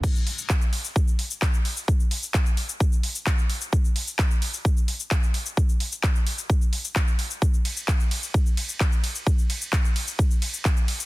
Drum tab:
CC |x---------------|----------------|----------------|----------------|
RD |----------------|----------------|----------------|----------------|
HH |--o---o---o---o-|--o---o---o---o-|--o---o---o---o-|--o---o---o---o-|
SH |xx-xxx-xxx-xxx-x|xx-xxx-xxx-xxx-x|xx-xxx-xxx-xxx-x|xx-xxx-xxx-xxx-x|
CP |----x-------x---|----x-------x---|----x-------x---|----x-------x---|
BD |o---o---o---o---|o---o---o---o---|o---o---o---o---|o---o---o---o---|

CC |----------------|----------------|
RD |--x---x---x---x-|--x---x---x---x-|
HH |--o---o---o---o-|--o---o---o---o-|
SH |xx-xxx-xxx-xxx-x|xx-xxx-xxx-xxx-x|
CP |----x-------x---|----x-------x---|
BD |o---o---o---o---|o---o---o---o---|